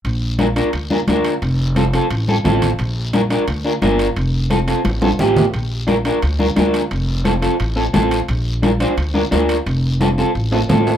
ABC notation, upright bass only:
X:1
M:4/4
L:1/8
Q:1/4=175
K:Bb
V:1 name="Upright bass" clef=bass
B,,,4 D,,2 D,,2 | F,,,4 A,,,2 A,,,2 | B,,,4 D,,2 G,,,2 | F,,,4 A,,,2 A,,,2 |
B,,,4 D,,2 D,,2 | F,,,4 A,,,2 A,,,2 | B,,,4 D,,2 D,,2 | F,,,4 A,,,2 A,,,2 |]